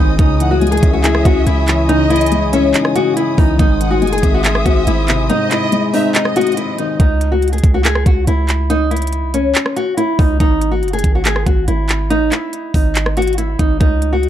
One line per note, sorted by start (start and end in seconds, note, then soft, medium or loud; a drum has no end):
0.00 0.18 G#1 loud
0.00 0.20 G#2 medium
0.00 0.21 C3 medium
0.00 0.19 D#3 medium
0.00 0.20 G#3 medium
0.00 0.21 C4 medium
0.00 0.17 D#4 medium
0.00 0.19 D#4 loud
0.00 0.15 C5 medium
0.00 0.15 D#5 medium
0.00 0.15 G#5 medium
0.00 3.55 D#6 medium
0.18 0.80 C#2 loud
0.18 1.25 C#3 medium
0.18 0.49 D#4 loud
0.18 3.56 C#5 medium
0.18 6.96 G#5 medium
0.18 kick loud
0.18 closed hi-hat medium
0.40 1.47 E3 medium
0.40 0.61 F#5 medium
0.40 closed hi-hat medium
0.51 0.70 F#4 medium
0.61 1.68 G#3 medium
0.61 0.81 G#5 medium
0.61 closed hi-hat soft
0.67 closed hi-hat medium
0.72 0.91 G#4 medium
0.72 closed hi-hat medium
0.77 closed hi-hat medium
0.83 1.24 C#2 loud
0.83 1.24 C#4 medium
0.83 1.85 E5 medium
0.83 kick medium
0.83 closed hi-hat medium
0.93 1.03 F#4 medium
1.04 2.10 E4 loud
1.04 1.24 G#4 medium
1.04 clap loud
1.04 closed hi-hat medium
1.15 cross-stick loud
1.25 1.46 C#2 loud
1.25 2.32 C#4 medium
1.25 1.45 F#4 medium
1.25 kick medium
1.25 closed hi-hat medium
1.47 2.44 C#2 loud
1.47 1.87 E4 medium
1.47 closed hi-hat medium
1.67 2.09 E3 medium
1.67 clap loud
1.67 closed hi-hat medium
1.89 2.95 C#3 medium
1.89 2.09 D#4 loud
1.89 2.49 D#5 loud
1.89 closed hi-hat medium
2.10 3.17 E3 medium
2.10 2.50 E4 medium
2.10 closed hi-hat medium
2.16 closed hi-hat medium
2.21 closed hi-hat medium
2.26 closed hi-hat medium
2.32 3.38 G#3 medium
2.32 closed hi-hat medium
2.42 2.60 C2 loud
2.52 2.94 C#4 medium
2.52 2.93 C#4 medium
2.52 2.73 E5 medium
2.52 closed hi-hat loud
2.58 2.73 C#2 loud
2.74 3.59 D#4 loud
2.74 clap loud
2.74 closed hi-hat medium
2.85 cross-stick loud
2.95 3.59 C#4 medium
2.95 3.15 F#4 loud
2.95 closed hi-hat medium
3.16 3.36 E4 medium
3.16 closed hi-hat medium
3.38 3.58 C#2 loud
3.38 3.59 E3 medium
3.38 3.58 D#4 medium
3.38 kick loud
3.38 open hi-hat medium
3.59 4.03 G#1 loud
3.59 4.66 G#2 loud
3.59 3.89 D#4 loud
3.59 6.96 C5 medium
3.59 6.96 D#6 loud
3.59 kick loud
3.59 closed hi-hat medium
3.80 4.87 D#3 medium
3.80 4.01 F#5 medium
3.80 closed hi-hat medium
3.91 4.11 F#4 medium
4.02 4.22 F#1 loud
4.02 5.08 G#3 medium
4.02 4.22 G#5 medium
4.02 closed hi-hat soft
4.07 closed hi-hat soft
4.12 4.32 G#4 medium
4.12 closed hi-hat medium
4.18 closed hi-hat medium
4.23 4.64 G#1 loud
4.23 4.64 C4 medium
4.23 5.26 E5 loud
4.23 kick medium
4.23 closed hi-hat medium
4.34 4.44 F#4 medium
4.44 4.64 G#4 medium
4.44 clap loud
4.44 closed hi-hat medium
4.55 cross-stick loud
4.65 4.86 G#1 loud
4.65 5.72 C4 medium
4.65 4.85 F#4 medium
4.65 kick medium
4.65 closed hi-hat medium
4.87 5.30 G#1 loud
4.87 5.27 E4 medium
4.87 closed hi-hat medium
5.08 6.15 C3 medium
5.08 clap loud
5.08 closed hi-hat medium
5.29 6.36 G#2 loud
5.29 5.49 D#4 loud
5.29 5.90 D#5 loud
5.29 closed hi-hat medium
5.50 5.91 E4 medium
5.50 clap loud
5.50 closed hi-hat medium
5.72 6.78 G#3 medium
5.72 closed hi-hat medium
5.93 6.35 C4 medium
5.93 6.34 D#4 medium
5.93 6.14 E5 medium
5.93 open hi-hat medium
6.15 7.00 D#4 loud
6.15 6.96 D#5 loud
6.15 clap loud
6.15 closed hi-hat medium
6.25 cross-stick loud
6.36 7.00 C4 medium
6.36 6.56 F#4 loud
6.36 closed hi-hat medium
6.41 closed hi-hat medium
6.47 closed hi-hat medium
6.52 closed hi-hat soft
6.57 6.77 E4 medium
6.57 closed hi-hat medium
6.78 7.00 D#3 medium
6.78 6.98 D#4 medium
6.78 closed hi-hat medium
7.00 7.61 C#2 loud
7.00 7.30 D#4 loud
7.00 kick loud
7.00 closed hi-hat medium
7.21 closed hi-hat medium
7.32 7.51 F#4 medium
7.42 closed hi-hat soft
7.48 closed hi-hat soft
7.52 7.72 G#4 medium
7.52 closed hi-hat medium
7.58 closed hi-hat medium
7.64 8.04 C#2 loud
7.64 kick medium
7.64 closed hi-hat medium
7.74 7.84 F#4 medium
7.85 8.05 G#4 medium
7.85 clap loud
7.85 closed hi-hat medium
7.95 cross-stick loud
8.06 8.27 C#2 loud
8.06 8.26 F#4 medium
8.06 kick medium
8.06 closed hi-hat medium
8.27 9.25 C#2 loud
8.27 8.67 E4 medium
8.27 closed hi-hat medium
8.49 clap loud
8.49 closed hi-hat medium
8.70 8.90 D#4 loud
8.70 closed hi-hat medium
8.91 9.31 E4 medium
8.91 closed hi-hat medium
8.97 closed hi-hat medium
9.02 closed hi-hat medium
9.07 closed hi-hat medium
9.13 closed hi-hat medium
9.23 9.41 C2 loud
9.34 9.74 C#4 medium
9.34 closed hi-hat medium
9.39 9.54 C#2 loud
9.55 clap loud
9.55 closed hi-hat medium
9.66 cross-stick loud
9.76 9.96 F#4 medium
9.76 closed hi-hat medium
9.97 10.17 E4 medium
9.97 closed hi-hat medium
10.19 10.39 C#2 loud
10.19 10.38 D#4 medium
10.19 kick loud
10.19 open hi-hat soft
10.40 10.84 G#1 loud
10.40 10.70 D#4 loud
10.40 kick loud
10.40 closed hi-hat medium
10.62 closed hi-hat medium
10.71 10.91 F#4 medium
10.83 11.03 F#1 medium
10.83 closed hi-hat soft
10.88 closed hi-hat soft
10.93 11.13 G#4 medium
10.93 closed hi-hat medium
10.99 closed hi-hat medium
11.04 11.45 G#1 loud
11.04 kick loud
11.04 closed hi-hat medium
11.15 11.25 F#4 medium
11.25 11.45 G#4 medium
11.25 clap loud
11.25 closed hi-hat medium
11.36 cross-stick loud
11.46 11.67 G#1 loud
11.46 11.66 F#4 medium
11.46 kick medium
11.46 closed hi-hat medium
11.68 12.12 G#1 loud
11.68 12.08 E4 medium
11.68 closed hi-hat medium
11.89 clap loud
11.89 closed hi-hat medium
12.10 12.23 A1 loud
12.10 12.30 D#4 loud
12.10 closed hi-hat medium
12.21 12.31 G#1 loud
12.31 12.72 E4 medium
12.31 clap medium
12.31 closed hi-hat medium
12.53 closed hi-hat medium
12.74 13.56 G#1 loud
12.74 13.15 D#4 medium
12.74 kick loud
12.74 open hi-hat medium
12.95 clap loud
12.95 closed hi-hat medium
13.06 cross-stick loud
13.17 13.37 F#4 loud
13.17 closed hi-hat medium
13.22 closed hi-hat medium
13.28 closed hi-hat medium
13.33 closed hi-hat soft
13.38 13.58 E4 medium
13.38 closed hi-hat medium
13.59 13.80 G#1 loud
13.59 13.79 D#4 medium
13.59 kick loud
13.59 closed hi-hat medium
13.80 14.29 C#2 loud
13.80 14.10 D#4 loud
13.80 kick loud
13.80 closed hi-hat medium
14.02 closed hi-hat medium
14.13 14.29 F#4 medium
14.23 closed hi-hat soft